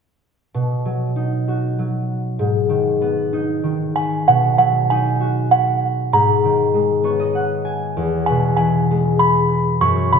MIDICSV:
0, 0, Header, 1, 3, 480
1, 0, Start_track
1, 0, Key_signature, 5, "major"
1, 0, Tempo, 621762
1, 415, Time_signature, 3, 2, 24, 8
1, 4249, Tempo, 614125
1, 7915, End_track
2, 0, Start_track
2, 0, Title_t, "Music box"
2, 0, Program_c, 0, 10
2, 3055, Note_on_c, 0, 80, 67
2, 3299, Note_off_c, 0, 80, 0
2, 3303, Note_on_c, 0, 78, 72
2, 3530, Note_off_c, 0, 78, 0
2, 3539, Note_on_c, 0, 78, 63
2, 3646, Note_off_c, 0, 78, 0
2, 3784, Note_on_c, 0, 80, 69
2, 4257, Note_on_c, 0, 78, 71
2, 4271, Note_off_c, 0, 80, 0
2, 4741, Note_on_c, 0, 82, 81
2, 4746, Note_off_c, 0, 78, 0
2, 5897, Note_off_c, 0, 82, 0
2, 6406, Note_on_c, 0, 80, 78
2, 6633, Note_off_c, 0, 80, 0
2, 6642, Note_on_c, 0, 80, 76
2, 7133, Note_on_c, 0, 83, 78
2, 7140, Note_off_c, 0, 80, 0
2, 7616, Note_on_c, 0, 85, 92
2, 7626, Note_off_c, 0, 83, 0
2, 7723, Note_off_c, 0, 85, 0
2, 7861, Note_on_c, 0, 83, 81
2, 7915, Note_off_c, 0, 83, 0
2, 7915, End_track
3, 0, Start_track
3, 0, Title_t, "Harp"
3, 0, Program_c, 1, 46
3, 420, Note_on_c, 1, 47, 54
3, 659, Note_on_c, 1, 54, 43
3, 896, Note_on_c, 1, 63, 45
3, 1143, Note_on_c, 1, 66, 46
3, 1371, Note_off_c, 1, 54, 0
3, 1380, Note_on_c, 1, 54, 44
3, 1845, Note_on_c, 1, 44, 60
3, 1889, Note_off_c, 1, 47, 0
3, 1889, Note_off_c, 1, 54, 0
3, 2079, Note_on_c, 1, 51, 45
3, 2326, Note_on_c, 1, 59, 45
3, 2567, Note_off_c, 1, 63, 0
3, 2570, Note_on_c, 1, 63, 47
3, 2797, Note_off_c, 1, 51, 0
3, 2806, Note_on_c, 1, 51, 46
3, 3024, Note_off_c, 1, 66, 0
3, 3302, Note_on_c, 1, 47, 55
3, 3326, Note_off_c, 1, 44, 0
3, 3326, Note_off_c, 1, 51, 0
3, 3530, Note_on_c, 1, 54, 46
3, 3784, Note_off_c, 1, 63, 0
3, 3787, Note_on_c, 1, 63, 47
3, 4018, Note_on_c, 1, 66, 49
3, 4729, Note_off_c, 1, 59, 0
3, 4736, Note_on_c, 1, 44, 58
3, 4768, Note_off_c, 1, 47, 0
3, 4768, Note_off_c, 1, 54, 0
3, 4985, Note_on_c, 1, 51, 46
3, 5216, Note_on_c, 1, 56, 45
3, 5446, Note_on_c, 1, 59, 47
3, 5452, Note_on_c, 1, 73, 56
3, 5572, Note_on_c, 1, 75, 59
3, 5692, Note_on_c, 1, 78, 60
3, 5895, Note_off_c, 1, 63, 0
3, 5919, Note_off_c, 1, 66, 0
3, 5925, Note_on_c, 1, 80, 58
3, 6174, Note_on_c, 1, 40, 62
3, 6201, Note_off_c, 1, 44, 0
3, 6201, Note_off_c, 1, 51, 0
3, 6201, Note_off_c, 1, 56, 0
3, 6221, Note_off_c, 1, 75, 0
3, 6432, Note_on_c, 1, 47, 50
3, 6651, Note_on_c, 1, 52, 50
3, 6910, Note_on_c, 1, 56, 48
3, 6947, Note_off_c, 1, 73, 0
3, 6948, Note_off_c, 1, 78, 0
3, 7097, Note_off_c, 1, 80, 0
3, 7613, Note_on_c, 1, 42, 57
3, 7647, Note_off_c, 1, 40, 0
3, 7647, Note_off_c, 1, 47, 0
3, 7647, Note_off_c, 1, 52, 0
3, 7647, Note_off_c, 1, 56, 0
3, 7861, Note_on_c, 1, 49, 44
3, 7874, Note_off_c, 1, 59, 0
3, 7915, Note_off_c, 1, 42, 0
3, 7915, Note_off_c, 1, 49, 0
3, 7915, End_track
0, 0, End_of_file